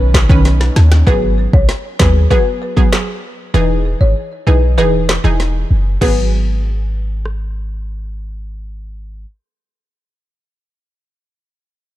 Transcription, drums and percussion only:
0.14 kick loud
0.14 snare loud
0.14 clap loud
0.30 kick loud
0.45 snare medium
0.45 closed hi-hat medium
0.61 snare medium
0.76 snare medium
0.92 snare loud
1.07 kick loud
1.53 kick loud
1.69 snare medium
2.00 kick loud
2.00 snare loud
2.00 clap loud
2.31 kick medium
2.77 kick medium
2.93 snare loud
2.93 clap medium
5.09 snare loud
5.09 clap medium
5.40 snare medium
6.02 kick loud
6.02 crash medium
7.26 cross-stick medium

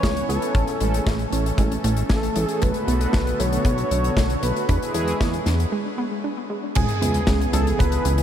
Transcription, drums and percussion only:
0.03 kick loud
0.03 snare loud
0.03 closed hi-hat medium
0.17 closed hi-hat medium
0.30 closed hi-hat medium
0.42 closed hi-hat medium
0.55 kick loud
0.55 closed hi-hat medium
0.68 closed hi-hat medium
0.81 closed hi-hat medium
0.94 closed hi-hat medium
1.07 kick loud
1.07 snare loud
1.07 closed hi-hat medium
1.19 closed hi-hat soft
1.33 closed hi-hat medium
1.46 closed hi-hat medium
1.58 kick loud
1.58 closed hi-hat medium
1.72 closed hi-hat medium
1.84 closed hi-hat medium
1.97 closed hi-hat medium
2.10 kick loud
2.10 snare loud
2.10 closed hi-hat medium
2.23 closed hi-hat medium
2.36 closed hi-hat medium
2.49 closed hi-hat medium
2.62 kick loud
2.62 closed hi-hat medium
2.74 closed hi-hat soft
2.88 closed hi-hat medium
3.01 closed hi-hat medium
3.13 kick loud
3.13 snare loud
3.13 closed hi-hat medium
3.27 closed hi-hat medium
3.40 closed hi-hat medium
3.53 closed hi-hat medium
3.65 kick loud
3.65 closed hi-hat medium
3.78 closed hi-hat medium
3.91 closed hi-hat medium
4.04 closed hi-hat medium
4.17 kick loud
4.17 snare loud
4.17 closed hi-hat medium
4.30 closed hi-hat medium
4.43 closed hi-hat loud
4.56 closed hi-hat soft
4.69 kick loud
4.69 closed hi-hat medium
4.83 closed hi-hat medium
4.94 closed hi-hat medium
5.08 closed hi-hat medium
5.21 kick loud
5.21 snare loud
5.21 closed hi-hat medium
5.34 closed hi-hat soft
5.46 snare medium
5.46 closed hi-hat medium
5.60 closed hi-hat medium
6.75 kick loud
6.75 closed hi-hat medium
6.75 crash loud
6.88 closed hi-hat medium
7.02 closed hi-hat loud
7.14 closed hi-hat medium
7.27 kick loud
7.27 snare loud
7.27 closed hi-hat medium
7.41 closed hi-hat medium
7.53 closed hi-hat loud
7.67 closed hi-hat medium
7.80 kick loud
7.80 closed hi-hat medium
7.92 closed hi-hat medium
8.05 closed hi-hat medium
8.18 closed hi-hat medium

